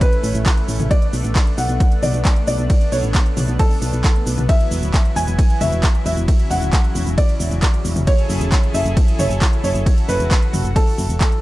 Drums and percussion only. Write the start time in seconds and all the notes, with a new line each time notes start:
0.01 kick, closed hi-hat, ride, shaker
0.12 closed hi-hat
0.24 open hi-hat, shaker
0.35 closed hi-hat, shaker
0.46 kick, clap, closed hi-hat, ride, shaker
0.57 closed hi-hat
0.68 open hi-hat, shaker
0.80 closed hi-hat, mid tom, shaker
0.91 kick, closed hi-hat, ride, shaker
1.02 closed hi-hat
1.13 open hi-hat, shaker
1.24 closed hi-hat, shaker
1.36 kick, clap, closed hi-hat, ride, shaker
1.47 closed hi-hat
1.58 open hi-hat, shaker
1.69 closed hi-hat, shaker
1.80 kick, closed hi-hat, ride, shaker
1.92 closed hi-hat
2.03 open hi-hat, mid tom, shaker
2.14 closed hi-hat, shaker
2.25 kick, clap, closed hi-hat, ride, shaker
2.36 closed hi-hat
2.47 open hi-hat, shaker
2.59 closed hi-hat, shaker
2.70 kick, closed hi-hat, ride, shaker
2.81 closed hi-hat
2.92 open hi-hat, shaker
3.03 closed hi-hat, shaker
3.15 kick, clap, closed hi-hat, ride, shaker
3.26 closed hi-hat
3.37 open hi-hat, mid tom, shaker
3.48 closed hi-hat, shaker
3.59 kick, closed hi-hat, ride, shaker
3.71 open hi-hat
3.82 open hi-hat, shaker
3.93 closed hi-hat, shaker
4.04 kick, clap, closed hi-hat, ride, shaker
4.16 closed hi-hat
4.27 open hi-hat, shaker
4.38 closed hi-hat, mid tom, shaker
4.49 kick, closed hi-hat, ride, shaker
4.60 closed hi-hat
4.71 open hi-hat, shaker
4.83 closed hi-hat, shaker
4.94 kick, clap, closed hi-hat, ride, shaker
5.05 closed hi-hat
5.16 open hi-hat, shaker
5.27 closed hi-hat, shaker
5.39 kick, closed hi-hat, ride, shaker
5.50 closed hi-hat
5.61 open hi-hat, mid tom, shaker
5.72 closed hi-hat, shaker
5.83 kick, clap, closed hi-hat, ride, shaker
5.95 closed hi-hat
6.06 open hi-hat, shaker
6.17 closed hi-hat, shaker
6.28 kick, closed hi-hat, ride, shaker
6.39 closed hi-hat
6.51 open hi-hat, shaker
6.62 closed hi-hat, shaker
6.73 kick, clap, closed hi-hat, ride, shaker
6.84 closed hi-hat
6.95 open hi-hat, shaker
7.07 closed hi-hat, shaker
7.18 kick, closed hi-hat, ride, shaker
7.29 closed hi-hat
7.40 open hi-hat, shaker
7.51 closed hi-hat, shaker
7.62 kick, clap, closed hi-hat, ride, shaker
7.74 closed hi-hat
7.85 open hi-hat, shaker
7.96 closed hi-hat, mid tom, shaker
8.07 kick, closed hi-hat, ride, shaker
8.18 closed hi-hat
8.30 open hi-hat, shaker
8.41 closed hi-hat, shaker
8.52 kick, clap, closed hi-hat, ride, shaker
8.63 closed hi-hat
8.74 open hi-hat, shaker
8.86 closed hi-hat, shaker
8.97 kick, closed hi-hat, ride, shaker
9.08 closed hi-hat
9.19 open hi-hat, mid tom, shaker
9.30 closed hi-hat, shaker
9.42 kick, clap, closed hi-hat, ride, shaker
9.53 closed hi-hat
9.64 open hi-hat, shaker
9.75 closed hi-hat, shaker
9.86 kick, closed hi-hat, ride, shaker
9.98 closed hi-hat
10.09 open hi-hat, shaker
10.20 closed hi-hat, shaker
10.31 kick, clap, closed hi-hat, ride, shaker
10.42 closed hi-hat
10.54 open hi-hat, mid tom, shaker
10.65 closed hi-hat, shaker
10.76 kick, closed hi-hat, ride, shaker
10.87 open hi-hat
10.98 open hi-hat, shaker
11.10 closed hi-hat, shaker
11.21 kick, clap, closed hi-hat, ride, shaker
11.32 closed hi-hat